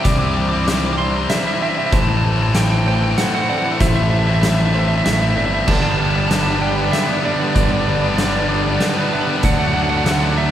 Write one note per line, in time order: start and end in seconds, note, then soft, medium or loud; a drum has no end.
0.00 0.51 C3 loud
0.00 0.36 E3 medium
0.00 0.68 G3 medium
0.00 1.30 D4 medium
0.00 1.88 D4 medium
0.00 1.30 E4 medium
0.00 1.90 G4 medium
0.00 1.90 C5 medium
0.00 1.89 E5 medium
0.04 1.26 C2 loud
0.04 0.20 G3 loud
0.04 0.20 C4 loud
0.04 0.19 E4 loud
0.04 0.68 D5 loud
0.04 0.12 D6 loud
0.04 kick loud
0.04 closed hi-hat medium
0.12 0.19 D6 medium
0.19 0.52 G3 medium
0.19 0.52 C4 medium
0.19 0.51 E4 medium
0.19 0.26 D6 loud
0.26 0.33 D6 medium
0.34 0.68 E3 medium
0.34 0.41 D6 loud
0.42 0.49 D6 medium
0.49 0.66 G3 medium
0.49 0.68 C4 medium
0.49 0.68 E4 medium
0.49 0.56 D6 loud
0.56 0.64 D6 medium
0.64 0.98 C3 loud
0.64 0.99 G3 loud
0.64 0.72 D6 loud
0.64 snare loud
0.64 closed hi-hat medium
0.68 2.24 E3 medium
0.68 1.00 C4 loud
0.68 1.01 E4 loud
0.68 0.78 D6 medium
0.78 0.86 D6 medium
0.86 0.92 D6 medium
0.93 0.97 D6 medium
0.98 1.46 C3 medium
0.98 1.15 G3 medium
0.98 1.15 C4 medium
0.98 1.14 E4 medium
0.98 1.61 D5 medium
0.98 1.31 C6 loud
1.15 1.46 G3 medium
1.15 1.46 C4 medium
1.15 1.44 E4 medium
1.30 3.17 E4 medium
1.30 1.36 E5 loud
1.30 snare medium
1.30 closed hi-hat medium
1.37 1.45 E5 medium
1.45 1.61 G3 medium
1.45 1.62 C4 medium
1.45 1.63 E4 medium
1.45 1.53 E5 medium
1.54 1.62 E5 medium
1.61 1.91 C3 medium
1.61 1.78 G3 medium
1.61 1.77 C4 medium
1.61 1.93 D4 medium
1.61 1.76 E4 medium
1.61 1.93 E5 medium
1.61 1.69 E5 medium
1.70 1.78 E5 medium
1.76 1.92 G3 medium
1.76 1.93 C4 medium
1.76 1.93 E4 medium
1.76 1.86 E5 medium
1.86 1.94 E5 medium
1.91 3.14 A1 loud
1.91 2.55 A2 medium
1.91 2.55 E3 loud
1.91 2.09 A3 loud
1.91 2.08 C4 loud
1.91 5.63 E4 medium
1.91 2.08 E4 loud
1.91 5.64 A4 medium
1.91 5.63 C5 medium
1.91 2.55 C5 loud
1.91 5.63 A5 loud
1.91 2.01 A5 loud
1.91 kick loud
1.91 closed hi-hat medium
2.01 2.09 A5 medium
2.08 2.42 A3 medium
2.08 2.41 C4 medium
2.08 2.40 E4 medium
2.08 2.17 A5 loud
2.17 2.25 A5 medium
2.24 2.54 E3 medium
2.24 2.33 A5 medium
2.33 2.41 A5 medium
2.41 2.56 A3 medium
2.41 2.56 C4 medium
2.41 2.57 E4 medium
2.41 2.48 A5 loud
2.48 2.55 A5 medium
2.55 3.18 A2 loud
2.55 2.86 E3 loud
2.55 2.86 A3 loud
2.55 2.87 C4 loud
2.55 2.87 E4 loud
2.55 2.63 G5 loud
2.55 snare loud
2.55 closed hi-hat medium
2.64 2.71 G5 medium
2.72 2.78 G5 loud
2.78 2.86 G5 medium
2.86 3.34 E3 medium
2.86 3.03 A3 medium
2.86 3.02 C4 medium
2.86 3.01 E4 medium
2.86 3.49 C5 medium
2.86 2.95 G5 loud
2.96 3.03 G5 medium
3.02 3.35 A3 medium
3.02 3.34 C4 medium
3.02 3.32 E4 medium
3.02 3.11 G5 loud
3.11 3.17 G5 medium
3.18 4.74 E4 medium
3.18 3.25 F#5 loud
3.18 snare loud
3.18 closed hi-hat medium
3.25 3.33 F#5 medium
3.34 3.49 A3 medium
3.34 3.50 C4 medium
3.34 3.50 E4 medium
3.34 3.41 F#5 medium
3.41 3.49 F#5 medium
3.49 3.79 E3 medium
3.49 3.65 A3 medium
3.49 3.65 C4 medium
3.49 3.63 E4 medium
3.49 3.80 D5 medium
3.49 3.57 F#5 medium
3.58 3.65 F#5 medium
3.64 3.79 A3 medium
3.64 3.80 C4 medium
3.64 3.81 E4 medium
3.64 3.74 F#5 medium
3.75 3.83 F#5 medium
3.79 5.02 A1 loud
3.79 4.27 A2 medium
3.79 4.27 E3 medium
3.79 3.96 A3 loud
3.79 3.95 C4 loud
3.79 3.94 E4 loud
3.79 4.43 C5 loud
3.79 3.87 E5 loud
3.79 kick loud
3.79 closed hi-hat medium
3.88 3.95 E5 medium
3.96 4.29 A3 medium
3.96 4.28 C4 medium
3.96 4.27 E4 medium
3.96 4.03 E5 loud
4.03 4.10 E5 medium
4.10 4.42 E3 medium
4.10 4.18 E5 medium
4.19 4.26 E5 medium
4.27 4.43 A3 medium
4.27 4.42 C4 medium
4.27 4.43 E4 medium
4.27 4.34 E5 medium
4.34 4.41 E5 medium
4.41 5.05 A2 loud
4.41 4.72 E3 loud
4.41 4.72 A3 loud
4.41 4.73 C4 loud
4.41 4.74 E4 loud
4.41 4.49 E5 loud
4.41 snare loud
4.41 closed hi-hat medium
4.49 4.57 E5 medium
4.58 4.65 E5 medium
4.65 4.72 E5 medium
4.73 5.20 E3 medium
4.73 4.89 A3 medium
4.73 4.88 C4 medium
4.73 4.87 E4 medium
4.73 5.37 C5 medium
4.73 4.80 E5 medium
4.80 4.87 E5 medium
4.88 5.21 A3 medium
4.88 5.20 C4 medium
4.88 5.19 E4 medium
4.88 4.95 E5 medium
4.97 5.05 E5 medium
5.05 5.34 A1 medium
5.05 5.68 E4 medium
5.05 5.13 E5 medium
5.05 snare loud
5.05 closed hi-hat medium
5.13 5.21 E5 medium
5.20 5.35 A3 medium
5.20 5.36 C4 medium
5.20 5.36 E4 medium
5.20 5.29 E5 medium
5.30 5.37 E5 medium
5.35 5.65 G1 medium
5.35 5.65 E3 medium
5.35 5.52 A3 medium
5.35 5.51 C4 medium
5.35 5.50 E4 medium
5.35 5.67 D5 medium
5.35 5.45 E5 medium
5.46 5.54 E5 medium
5.51 5.66 A3 medium
5.51 5.66 C4 medium
5.51 5.65 E4 medium
5.51 5.61 E5 medium
5.62 5.70 E5 medium
5.67 6.89 G1 loud
5.67 6.28 G2 loud
5.67 6.14 D3 medium
5.67 5.83 G3 medium
5.67 5.82 B3 medium
5.67 5.81 D4 loud
5.67 9.40 G4 medium
5.67 9.41 B4 medium
5.67 6.31 D5 loud
5.67 9.40 D5 medium
5.67 5.74 A5 loud
5.67 7.54 B5 medium
5.67 kick loud
5.67 crash loud
5.74 5.81 A5 medium
5.81 6.15 G3 medium
5.81 6.14 B3 medium
5.81 6.12 D4 medium
5.81 5.89 A5 loud
5.91 5.97 A5 medium
5.98 6.28 D3 medium
5.98 6.30 D3 medium
5.98 6.17 G3 medium
5.98 6.16 B3 medium
5.98 6.14 D4 medium
5.98 6.04 A5 medium
6.04 6.12 A5 medium
6.12 6.29 G3 medium
6.12 6.30 B3 medium
6.12 6.30 D4 medium
6.12 6.19 A5 medium
6.20 6.27 A5 medium
6.28 6.92 G2 medium
6.28 6.58 D3 medium
6.28 6.59 G3 loud
6.28 6.60 B3 loud
6.28 6.61 D4 loud
6.28 6.34 A5 medium
6.28 snare loud
6.28 closed hi-hat medium
6.35 6.42 A5 medium
6.43 6.50 A5 medium
6.47 6.80 G3 medium
6.47 6.79 B3 medium
6.47 6.78 D4 medium
6.52 6.59 A5 medium
6.60 7.08 D3 medium
6.60 6.76 G3 medium
6.60 6.75 B3 medium
6.60 6.75 D4 medium
6.60 7.24 D5 medium
6.60 6.91 G5 loud
6.75 7.07 G3 medium
6.75 7.06 B3 medium
6.75 7.06 D4 medium
6.81 7.11 G3 medium
6.92 8.79 D4 medium
6.92 7.22 E5 medium
6.92 snare medium
6.92 closed hi-hat medium
7.06 7.22 G3 medium
7.06 7.23 B3 medium
7.06 7.24 D4 medium
7.11 7.26 B3 medium
7.23 7.54 D3 medium
7.23 7.40 G3 medium
7.23 7.39 B3 medium
7.23 7.38 D4 medium
7.23 7.32 D5 medium
7.23 7.56 E5 medium
7.33 7.40 D5 medium
7.39 7.54 G3 medium
7.39 7.55 B3 medium
7.39 7.56 D4 medium
7.39 7.48 D5 medium
7.48 7.55 D5 medium
7.55 8.77 G1 loud
7.55 8.02 G2 loud
7.55 8.03 D3 loud
7.55 7.72 G3 loud
7.55 7.71 B3 loud
7.55 7.71 D4 loud
7.55 7.62 D5 medium
7.55 8.19 D5 loud
7.55 10.51 A5 medium
7.55 kick loud
7.55 closed hi-hat medium
7.63 7.71 D5 medium
7.71 8.04 G3 medium
7.71 8.02 B3 medium
7.71 8.02 D4 medium
7.71 7.79 D5 medium
7.79 7.86 D5 medium
7.86 8.16 D3 medium
7.86 8.19 D3 medium
7.86 8.05 G3 medium
7.86 8.03 B3 medium
7.86 7.94 D5 medium
7.90 8.03 D4 medium
7.95 8.01 D5 medium
8.01 8.18 G3 medium
8.01 8.18 B3 medium
8.01 8.20 D4 medium
8.01 8.08 D5 medium
8.09 8.16 D5 medium
8.17 8.81 G2 loud
8.17 8.48 D3 loud
8.17 8.48 G3 loud
8.17 8.49 B3 loud
8.17 8.51 D4 loud
8.17 8.24 D5 medium
8.17 snare medium
8.17 closed hi-hat medium
8.24 8.32 D5 medium
8.32 8.66 D4 medium
8.32 8.39 D5 medium
8.37 8.67 G3 medium
8.37 8.66 B3 medium
8.37 8.47 D5 medium
8.49 8.96 D3 medium
8.49 8.66 G3 medium
8.49 8.65 B3 loud
8.49 8.65 D4 medium
8.49 8.55 D5 medium
8.49 9.12 D5 medium
8.55 8.62 D5 medium
8.63 8.97 B3 medium
8.63 8.97 D4 medium
8.63 8.70 D5 medium
8.67 8.98 G3 medium
8.67 8.77 D5 medium
8.78 10.51 D4 medium
8.78 8.88 B4 medium
8.78 8.85 D5 medium
8.78 snare medium
8.78 closed hi-hat medium
8.89 8.96 B4 medium
8.97 9.12 G3 medium
8.97 9.12 B3 medium
8.97 9.14 D4 medium
8.97 9.05 B4 medium
9.06 9.12 B4 medium
9.12 9.42 D3 medium
9.12 9.28 G3 medium
9.12 9.28 B3 medium
9.12 9.27 D4 medium
9.12 9.20 B4 medium
9.12 9.44 E5 medium
9.21 9.29 B4 medium
9.28 9.43 G3 medium
9.28 9.42 B3 medium
9.28 9.45 D4 medium
9.28 9.37 B4 medium
9.37 9.45 B4 medium
9.43 10.51 D2 loud
9.43 10.04 D3 loud
9.43 9.60 F#3 loud
9.43 9.59 A3 loud
9.43 9.59 D4 loud
9.43 10.51 F#4 medium
9.43 10.51 A4 medium
9.43 10.06 D5 loud
9.43 10.51 D5 medium
9.43 9.52 F#5 loud
9.43 kick loud
9.43 closed hi-hat medium
9.52 9.59 F#5 medium
9.59 9.92 F#3 medium
9.59 9.90 A3 medium
9.59 9.89 D4 medium
9.59 9.66 F#5 loud
9.67 9.73 F#5 medium
9.74 10.05 D3 medium
9.74 10.35 F#3 medium
9.74 9.93 F#3 medium
9.74 9.91 A3 medium
9.74 9.90 D4 loud
9.74 9.81 F#5 loud
9.83 9.89 F#5 medium
9.89 10.05 F#3 medium
9.89 10.06 A3 medium
9.89 10.06 D4 medium
9.89 9.96 F#5 loud
9.97 10.04 F#5 medium
10.05 10.35 D3 loud
10.05 10.36 F#3 loud
10.05 10.37 A3 loud
10.05 10.38 D4 loud
10.05 10.11 F#5 medium
10.05 snare loud
10.05 closed hi-hat medium
10.12 10.19 F#5 medium
10.19 10.51 A3 medium
10.19 10.51 D4 medium
10.19 10.27 F#5 medium
10.24 10.51 F#3 medium
10.24 10.35 F#5 medium
10.37 10.51 D3 medium
10.37 10.51 F#3 medium
10.37 10.51 A3 medium
10.37 10.51 D4 medium
10.37 10.51 D5 medium
10.37 10.51 E5 medium